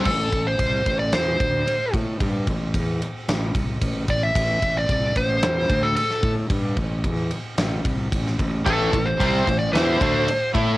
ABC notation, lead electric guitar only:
X:1
M:4/4
L:1/16
Q:1/4=112
K:Am
V:1 name="Lead electric guitar"
A3 c4 d c6 z2 | z12 z2 d e- | e3 d3 c4- c A A3 z | z16 |
A3 c4 d c6 z2 |]